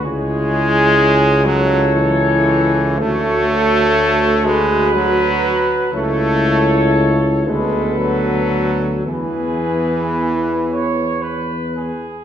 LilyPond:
<<
  \new Staff \with { instrumentName = "Trumpet section" } { \time 6/8 \key a \major \tempo 4. = 39 cis''4. cis''4. | cis''4. b'4. | cis''4. b'4. | b'2~ b'8 r8 | }
  \new Staff \with { instrumentName = "Flugelhorn" } { \time 6/8 \key a \major gis'4. a'4. | a'4. b'4. | a'4. a'4. | gis'4. cis''8 b'8 gis'8 | }
  \new Staff \with { instrumentName = "Euphonium" } { \time 6/8 \key a \major e'4. e'4. | fis'4. fis'4. | e'4. b4. | b2~ b8 r8 | }
  \new Staff \with { instrumentName = "Trombone" } { \clef bass \time 6/8 \key a \major gis4. fis8 e4 | a4. gis8 fis4 | a4 r8 gis8 fis4 | e2~ e8 r8 | }
  \new Staff \with { instrumentName = "Tuba" } { \clef bass \time 6/8 \key a \major cis,2. | d,2. | cis,4. d,4. | e,2~ e,8 r8 | }
>>